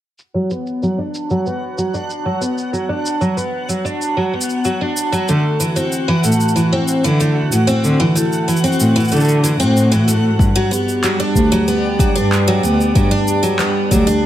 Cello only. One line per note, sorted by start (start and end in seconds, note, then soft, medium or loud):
5.29 5.39 D3 medium
6.25 6.35 A2 medium
7.05 7.43 D3 medium
7.52 7.62 A2 medium
7.84 7.94 D3 medium
8.81 8.90 A2 medium
9.13 9.60 D3 medium
9.61 10.30 A2 medium
10.39 10.49 G2 medium
11.36 11.45 D2 medium
12.16 12.53 G2 medium
12.63 12.73 D2 medium
12.96 13.05 G2 medium
13.91 14.01 D2 medium